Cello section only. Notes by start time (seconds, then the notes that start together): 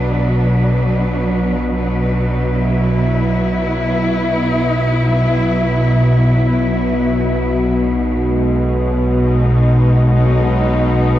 Already playing: B2 F#3 D4 B4
2.55 E4
7.73 B2
8.24 G#3
9.13 D#4